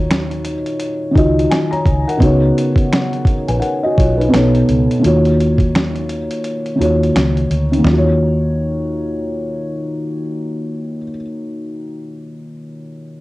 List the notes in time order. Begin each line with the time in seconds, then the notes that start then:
Already playing: D#2 D#3 D#4 F4 F#4 C#5
0.10 finger snap, snare, closed hi-hat
0.31 closed hi-hat
0.45 closed hi-hat
0.66 closed hi-hat
0.80 closed hi-hat
1.11 D#3 D#4 F4
1.16 C#2 F#4 D#5, kick, closed hi-hat
1.39 closed hi-hat
1.50 G#5, finger snap, snare, closed hi-hat
1.71 C#5 A#5, closed hi-hat
1.86 C#2, kick, closed hi-hat
2.08 A#4 F#5, closed hi-hat
2.17 C#2 C#3 B3 D#4, kick
2.22 F#4 C#5, closed hi-hat
2.58 closed hi-hat
2.76 kick, closed hi-hat
2.93 finger snap, snare, closed hi-hat
3.13 closed hi-hat
3.25 kick, closed hi-hat
3.48 A#1 B4 G#5, closed hi-hat
3.60 A#4 F#5, closed hi-hat
3.83 F#4 D#5
3.98 B1 F4 C#5, kick, closed hi-hat
4.18 D#4 B4, closed hi-hat
4.28 B2 B3 D#4
4.33 B1 A4 C#5, finger snap, snare, closed hi-hat
4.55 closed hi-hat
4.69 C#2, closed hi-hat
4.91 closed hi-hat
4.99 D#3 A#3 F4
5.04 D#2 F#4 C#5, closed hi-hat
5.25 closed hi-hat
5.40 closed hi-hat
5.58 kick, closed hi-hat
5.75 finger snap, snare, closed hi-hat
5.96 closed hi-hat
6.09 closed hi-hat
6.31 closed hi-hat
6.44 closed hi-hat
6.66 closed hi-hat
6.76 D#3 A#3 F4
6.80 D#2 F#4 C#5, closed hi-hat
7.03 closed hi-hat
7.15 C#2, finger snap, snare, closed hi-hat
7.37 closed hi-hat
7.51 D2, closed hi-hat
7.72 D#3, closed hi-hat
7.78 A#3
7.84 D#2 F4, snare, floor tom
7.91 F#4
7.98 C#5